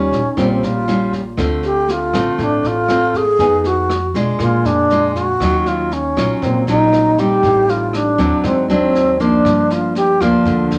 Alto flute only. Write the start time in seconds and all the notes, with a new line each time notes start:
Already playing: C#4
0.38 C4
0.65 F4
1.65 G4
1.91 F4
2.43 D4
2.67 F4
3.17 G#4
3.67 F#4
4.41 F4
4.66 D4
5.15 F#4
5.68 F4
5.93 C#4
6.42 C4
6.68 D#4
7.19 G4
7.70 F4
7.95 D4
8.46 C4
8.72 C4
9.21 D4
9.72 F4
9.97 G4
10.21 F4